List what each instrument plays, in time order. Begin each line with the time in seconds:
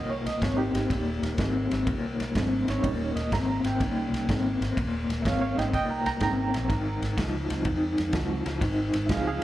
Already playing: fingered electric bass C2, clean electric guitar D#2 A#2
0.10 reed electric piano C#5
0.26 fingered electric bass C2, reed electric piano D#5, snare, ride
0.42 fingered electric bass G#1, clean electric guitar D#2 C3, reed electric piano C#5, kick, snare, ride
0.57 reed electric piano D#4 G4
0.73 fingered electric bass G#1, clean electric guitar D#2 C3, snare, ride
0.90 fingered electric bass D#1, clean electric guitar D#2 A#2, kick, snare, ride
1.23 fingered electric bass D#1, snare, ride
1.38 fingered electric bass G#1, clean electric guitar D#2 C3, kick, snare, ride
1.71 fingered electric bass G#1, clean electric guitar D#2 C3, snare, ride
1.87 fingered electric bass C2, clean electric guitar D#2 A#2, kick, ride
2.19 fingered electric bass C2, snare, ride
2.35 fingered electric bass G#1, clean electric guitar D#2 C3, reed electric piano F#3 A3 C4 D4, kick, snare, ride
2.67 fingered electric bass G#1, clean electric guitar D#2 C3, reed electric piano G3 A#3 C#4 D#4 C#5, snare, ride
2.82 fingered electric bass D#1, clean electric guitar D#2 A#2, reed electric piano G3 A#3 C#4 D#4, kick, ride
3.16 fingered electric bass D#1, reed electric piano D#5, snare, ride
3.32 fingered electric bass G#1, clean electric guitar D#2 C3, reed electric piano A#5, kick, snare, ride
3.63 fingered electric bass G#1, clean electric guitar D#2 C3, reed electric piano G5, snare, ride
3.81 fingered electric bass C2, clean electric guitar D#2 A#2, reed electric piano G3 A#3 C#4 D#4, kick, snare, ride
4.12 fingered electric bass C2, snare, ride
4.29 fingered electric bass G#1, clean electric guitar D#2 C3, kick, snare, ride
4.61 fingered electric bass G#1, clean electric guitar D#2 C3, snare, ride
4.77 fingered electric bass D#1, clean electric guitar D#2 A#2, kick, ride
5.09 fingered electric bass D#1, snare, ride
5.22 fingered electric bass G#1, clean electric guitar D#2, reed electric piano C#5 E5, kick, ride
5.27 clean electric guitar C3, reed electric piano F5, snare
5.41 reed electric piano C#5 F5
5.56 fingered electric bass G#1, clean electric guitar D#2 C3, reed electric piano G3 A#3 C#4 D#4 D#5 G5, ride
5.60 snare
5.74 fingered electric bass C2, clean electric guitar D#2 A#2, reed electric piano D#5 G5, kick, snare, ride
5.90 reed electric piano G5 A#5
6.06 fingered electric bass C2, reed electric piano G5 A#5, snare, ride
6.18 fingered electric bass G#1, clean electric guitar D#2, reed electric piano G3 A#3 C#4 D#4, kick, snare, ride
6.22 clean electric guitar C3, reed electric piano G5 A#5
6.54 fingered electric bass A#1, clean electric guitar D#2 C3, snare, ride
6.69 fingered electric bass G#1, clean electric guitar G#2 D#3, kick, snare, ride
7.02 fingered electric bass G#1, snare, ride
7.17 fingered electric bass C#2, clean electric guitar G#2 F3, kick, snare, ride
7.48 fingered electric bass C#2, clean electric guitar G#2 F3, reed electric piano F#3 G#3 C4 D#4, snare, ride
7.65 fingered electric bass F2, clean electric guitar G#2 D#3, kick, ride
7.98 fingered electric bass F2, snare, ride
8.13 fingered electric bass C#2, clean electric guitar G#2 F3, reed electric piano F#3 G#3 C4 F#4, kick, snare, ride
8.46 fingered electric bass C#2, clean electric guitar G#2 F3, snare, ride
8.61 fingered electric bass G#1, clean electric guitar G#2 D#3, kick, snare, ride
8.94 fingered electric bass G#1, snare, ride
9.06 fingered electric bass C#2, clean electric guitar G#2 F3, reed electric piano F#3 G#3 C4 D#4 E5, kick, snare, ride
9.11 reed electric piano G#4 F5
9.27 reed electric piano G#4 F5